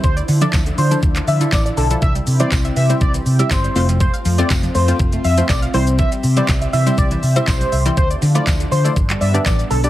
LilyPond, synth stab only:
\new Staff \with { instrumentName = "Synth stab" } { \time 4/4 \key c \major \tempo 4 = 121 r8. <f d' e' a'>8. r16 <f d' e' a'>8. r16 <f d' e' a'>8. r16 <f d' e' a'>16 | r8. <g c' e' c''>8. r16 <g c' e' c''>8. r16 <g c' e' g'>8. <a c' f' c''>8~ | <a c' f' c''>8 r16 <a c' f' c''>8. r16 <a c' f' c''>8. r16 <a c' f' c''>8. <g c' e' c''>8~ | <g c' e' c''>8 r16 <g c' e' c''>8. r16 <g c' e' c''>8. r16 <g c' e' c''>8. r16 <g c' e' c''>16 |
r8. <a e' f' d''>8. r16 <a e' f' d''>16 r8. <b d' g' d''>8. r16 <b d' g' d''>16 | }